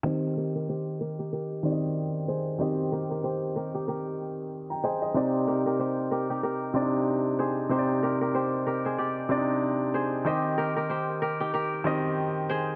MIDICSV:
0, 0, Header, 1, 3, 480
1, 0, Start_track
1, 0, Key_signature, -3, "major"
1, 0, Tempo, 638298
1, 35, Time_signature, 4, 2, 24, 8
1, 9593, End_track
2, 0, Start_track
2, 0, Title_t, "Kora"
2, 0, Program_c, 0, 46
2, 37, Note_on_c, 0, 72, 78
2, 43, Note_on_c, 0, 67, 60
2, 277, Note_on_c, 0, 70, 73
2, 280, Note_off_c, 0, 67, 0
2, 283, Note_on_c, 0, 67, 58
2, 414, Note_off_c, 0, 70, 0
2, 417, Note_on_c, 0, 70, 66
2, 420, Note_off_c, 0, 67, 0
2, 423, Note_on_c, 0, 67, 50
2, 514, Note_off_c, 0, 72, 0
2, 517, Note_on_c, 0, 72, 76
2, 520, Note_off_c, 0, 67, 0
2, 523, Note_on_c, 0, 67, 59
2, 754, Note_off_c, 0, 70, 0
2, 757, Note_on_c, 0, 70, 70
2, 761, Note_off_c, 0, 67, 0
2, 764, Note_on_c, 0, 67, 55
2, 892, Note_off_c, 0, 67, 0
2, 895, Note_on_c, 0, 67, 70
2, 902, Note_on_c, 0, 63, 54
2, 994, Note_off_c, 0, 70, 0
2, 997, Note_on_c, 0, 70, 81
2, 1000, Note_off_c, 0, 67, 0
2, 1003, Note_on_c, 0, 67, 67
2, 1410, Note_off_c, 0, 72, 0
2, 1716, Note_on_c, 0, 72, 76
2, 1723, Note_on_c, 0, 68, 62
2, 1768, Note_off_c, 0, 67, 0
2, 1954, Note_off_c, 0, 72, 0
2, 1955, Note_off_c, 0, 70, 0
2, 1957, Note_on_c, 0, 72, 80
2, 1963, Note_on_c, 0, 67, 60
2, 2008, Note_off_c, 0, 68, 0
2, 2122, Note_off_c, 0, 63, 0
2, 2197, Note_on_c, 0, 70, 76
2, 2200, Note_off_c, 0, 67, 0
2, 2203, Note_on_c, 0, 67, 61
2, 2333, Note_off_c, 0, 70, 0
2, 2336, Note_on_c, 0, 70, 69
2, 2339, Note_off_c, 0, 67, 0
2, 2342, Note_on_c, 0, 67, 54
2, 2433, Note_off_c, 0, 72, 0
2, 2436, Note_on_c, 0, 72, 79
2, 2439, Note_off_c, 0, 67, 0
2, 2442, Note_on_c, 0, 67, 59
2, 2674, Note_off_c, 0, 70, 0
2, 2677, Note_on_c, 0, 70, 69
2, 2680, Note_off_c, 0, 67, 0
2, 2683, Note_on_c, 0, 67, 53
2, 2813, Note_off_c, 0, 67, 0
2, 2816, Note_on_c, 0, 67, 69
2, 2822, Note_on_c, 0, 63, 54
2, 2914, Note_off_c, 0, 70, 0
2, 2917, Note_on_c, 0, 70, 84
2, 2920, Note_off_c, 0, 67, 0
2, 2923, Note_on_c, 0, 67, 65
2, 3329, Note_off_c, 0, 72, 0
2, 3637, Note_on_c, 0, 72, 84
2, 3643, Note_on_c, 0, 68, 65
2, 3688, Note_off_c, 0, 67, 0
2, 3874, Note_off_c, 0, 70, 0
2, 3874, Note_off_c, 0, 72, 0
2, 3877, Note_on_c, 0, 72, 76
2, 3883, Note_on_c, 0, 67, 62
2, 3928, Note_off_c, 0, 68, 0
2, 4042, Note_off_c, 0, 63, 0
2, 4118, Note_on_c, 0, 70, 76
2, 4121, Note_off_c, 0, 67, 0
2, 4124, Note_on_c, 0, 67, 60
2, 4254, Note_off_c, 0, 70, 0
2, 4257, Note_on_c, 0, 70, 70
2, 4259, Note_off_c, 0, 67, 0
2, 4262, Note_on_c, 0, 67, 53
2, 4354, Note_off_c, 0, 72, 0
2, 4357, Note_on_c, 0, 72, 79
2, 4360, Note_off_c, 0, 67, 0
2, 4363, Note_on_c, 0, 67, 59
2, 4594, Note_off_c, 0, 70, 0
2, 4597, Note_on_c, 0, 70, 71
2, 4600, Note_off_c, 0, 67, 0
2, 4603, Note_on_c, 0, 67, 58
2, 4734, Note_off_c, 0, 67, 0
2, 4737, Note_on_c, 0, 67, 70
2, 4742, Note_on_c, 0, 63, 55
2, 4834, Note_off_c, 0, 70, 0
2, 4837, Note_on_c, 0, 70, 85
2, 4840, Note_off_c, 0, 67, 0
2, 4843, Note_on_c, 0, 67, 63
2, 5250, Note_off_c, 0, 72, 0
2, 5557, Note_on_c, 0, 72, 84
2, 5563, Note_on_c, 0, 68, 60
2, 5608, Note_off_c, 0, 67, 0
2, 5794, Note_off_c, 0, 70, 0
2, 5794, Note_off_c, 0, 72, 0
2, 5797, Note_on_c, 0, 72, 78
2, 5803, Note_on_c, 0, 67, 62
2, 5848, Note_off_c, 0, 68, 0
2, 5962, Note_off_c, 0, 63, 0
2, 6038, Note_on_c, 0, 70, 78
2, 6041, Note_off_c, 0, 67, 0
2, 6044, Note_on_c, 0, 67, 60
2, 6173, Note_off_c, 0, 70, 0
2, 6176, Note_on_c, 0, 70, 69
2, 6179, Note_off_c, 0, 67, 0
2, 6182, Note_on_c, 0, 67, 52
2, 6274, Note_off_c, 0, 72, 0
2, 6277, Note_on_c, 0, 72, 75
2, 6280, Note_off_c, 0, 67, 0
2, 6283, Note_on_c, 0, 67, 59
2, 6514, Note_off_c, 0, 70, 0
2, 6517, Note_on_c, 0, 70, 72
2, 6519, Note_off_c, 0, 67, 0
2, 6522, Note_on_c, 0, 67, 57
2, 6653, Note_off_c, 0, 72, 0
2, 6656, Note_on_c, 0, 72, 70
2, 6662, Note_on_c, 0, 68, 55
2, 6707, Note_off_c, 0, 67, 0
2, 6756, Note_on_c, 0, 74, 82
2, 6762, Note_on_c, 0, 67, 66
2, 6807, Note_off_c, 0, 68, 0
2, 7473, Note_off_c, 0, 72, 0
2, 7474, Note_off_c, 0, 70, 0
2, 7476, Note_on_c, 0, 72, 79
2, 7482, Note_on_c, 0, 68, 63
2, 7528, Note_off_c, 0, 67, 0
2, 7589, Note_off_c, 0, 74, 0
2, 7712, Note_off_c, 0, 72, 0
2, 7715, Note_on_c, 0, 72, 75
2, 7722, Note_on_c, 0, 67, 62
2, 7767, Note_off_c, 0, 68, 0
2, 7955, Note_on_c, 0, 70, 77
2, 7958, Note_off_c, 0, 67, 0
2, 7961, Note_on_c, 0, 67, 60
2, 8092, Note_off_c, 0, 70, 0
2, 8095, Note_on_c, 0, 70, 68
2, 8098, Note_off_c, 0, 67, 0
2, 8101, Note_on_c, 0, 67, 53
2, 8192, Note_off_c, 0, 72, 0
2, 8195, Note_on_c, 0, 72, 76
2, 8198, Note_off_c, 0, 67, 0
2, 8201, Note_on_c, 0, 67, 62
2, 8433, Note_off_c, 0, 70, 0
2, 8436, Note_on_c, 0, 70, 70
2, 8439, Note_off_c, 0, 67, 0
2, 8442, Note_on_c, 0, 67, 55
2, 8573, Note_off_c, 0, 67, 0
2, 8576, Note_on_c, 0, 67, 69
2, 8582, Note_on_c, 0, 63, 56
2, 8673, Note_off_c, 0, 70, 0
2, 8676, Note_on_c, 0, 70, 80
2, 8679, Note_off_c, 0, 67, 0
2, 8682, Note_on_c, 0, 67, 65
2, 9088, Note_off_c, 0, 72, 0
2, 9397, Note_on_c, 0, 72, 77
2, 9402, Note_on_c, 0, 68, 64
2, 9447, Note_off_c, 0, 67, 0
2, 9593, Note_off_c, 0, 63, 0
2, 9593, Note_off_c, 0, 68, 0
2, 9593, Note_off_c, 0, 70, 0
2, 9593, Note_off_c, 0, 72, 0
2, 9593, End_track
3, 0, Start_track
3, 0, Title_t, "Grand piano"
3, 0, Program_c, 1, 0
3, 25, Note_on_c, 1, 51, 78
3, 31, Note_on_c, 1, 60, 71
3, 37, Note_on_c, 1, 67, 73
3, 43, Note_on_c, 1, 75, 86
3, 163, Control_c, 1, 64, 127
3, 860, Note_off_c, 1, 51, 0
3, 863, Note_off_c, 1, 60, 0
3, 866, Note_off_c, 1, 67, 0
3, 869, Note_off_c, 1, 75, 0
3, 1226, Note_on_c, 1, 51, 82
3, 1231, Note_on_c, 1, 60, 74
3, 1238, Note_on_c, 1, 67, 71
3, 1244, Note_on_c, 1, 74, 72
3, 1293, Note_on_c, 1, 75, 88
3, 1296, Note_off_c, 1, 74, 0
3, 1859, Note_off_c, 1, 51, 0
3, 1862, Note_off_c, 1, 60, 0
3, 1865, Note_off_c, 1, 67, 0
3, 1892, Note_off_c, 1, 75, 0
3, 1945, Note_on_c, 1, 51, 78
3, 1951, Note_on_c, 1, 60, 72
3, 1958, Note_on_c, 1, 67, 73
3, 1964, Note_on_c, 1, 75, 89
3, 2780, Note_off_c, 1, 51, 0
3, 2783, Note_off_c, 1, 60, 0
3, 2786, Note_off_c, 1, 67, 0
3, 2790, Note_off_c, 1, 75, 0
3, 3536, Note_on_c, 1, 82, 63
3, 3540, Note_on_c, 1, 79, 52
3, 3625, Note_off_c, 1, 79, 0
3, 3631, Note_off_c, 1, 82, 0
3, 3636, Note_on_c, 1, 79, 68
3, 3641, Note_on_c, 1, 75, 57
3, 3764, Note_off_c, 1, 75, 0
3, 3768, Note_off_c, 1, 79, 0
3, 3775, Note_on_c, 1, 75, 69
3, 3779, Note_on_c, 1, 72, 57
3, 3866, Note_on_c, 1, 48, 77
3, 3873, Note_on_c, 1, 60, 77
3, 3879, Note_on_c, 1, 63, 75
3, 3884, Control_c, 1, 64, 0
3, 3885, Note_on_c, 1, 74, 87
3, 4003, Note_off_c, 1, 75, 0
3, 4005, Note_off_c, 1, 72, 0
3, 4006, Control_c, 1, 64, 127
3, 4701, Note_off_c, 1, 48, 0
3, 4704, Note_off_c, 1, 60, 0
3, 4707, Note_off_c, 1, 63, 0
3, 4710, Note_off_c, 1, 74, 0
3, 5065, Note_on_c, 1, 48, 81
3, 5071, Note_on_c, 1, 60, 77
3, 5078, Note_on_c, 1, 62, 60
3, 5084, Note_on_c, 1, 74, 91
3, 5127, Note_on_c, 1, 63, 75
3, 5133, Note_off_c, 1, 62, 0
3, 5699, Note_off_c, 1, 48, 0
3, 5702, Note_off_c, 1, 60, 0
3, 5708, Note_off_c, 1, 74, 0
3, 5729, Note_off_c, 1, 63, 0
3, 5785, Note_on_c, 1, 48, 82
3, 5791, Note_on_c, 1, 60, 75
3, 5798, Note_on_c, 1, 63, 75
3, 5803, Note_on_c, 1, 72, 71
3, 5853, Note_on_c, 1, 74, 90
3, 5856, Note_off_c, 1, 72, 0
3, 6620, Note_off_c, 1, 48, 0
3, 6623, Note_off_c, 1, 60, 0
3, 6626, Note_off_c, 1, 63, 0
3, 6654, Note_off_c, 1, 74, 0
3, 6984, Note_on_c, 1, 48, 83
3, 6990, Note_on_c, 1, 60, 74
3, 6997, Note_on_c, 1, 62, 57
3, 7003, Note_on_c, 1, 74, 92
3, 7046, Note_on_c, 1, 63, 77
3, 7053, Note_off_c, 1, 62, 0
3, 7618, Note_off_c, 1, 48, 0
3, 7621, Note_off_c, 1, 60, 0
3, 7628, Note_off_c, 1, 74, 0
3, 7649, Note_off_c, 1, 63, 0
3, 7705, Note_on_c, 1, 51, 76
3, 7711, Note_on_c, 1, 60, 69
3, 7718, Note_on_c, 1, 67, 72
3, 7724, Note_on_c, 1, 75, 85
3, 7726, Control_c, 1, 64, 0
3, 7880, Control_c, 1, 64, 127
3, 8540, Note_off_c, 1, 51, 0
3, 8543, Note_off_c, 1, 60, 0
3, 8546, Note_off_c, 1, 67, 0
3, 8549, Note_off_c, 1, 75, 0
3, 8905, Note_on_c, 1, 51, 84
3, 8911, Note_on_c, 1, 60, 76
3, 8918, Note_on_c, 1, 67, 77
3, 8924, Note_on_c, 1, 75, 87
3, 9539, Note_off_c, 1, 51, 0
3, 9542, Note_off_c, 1, 60, 0
3, 9545, Note_off_c, 1, 67, 0
3, 9548, Note_off_c, 1, 75, 0
3, 9593, End_track
0, 0, End_of_file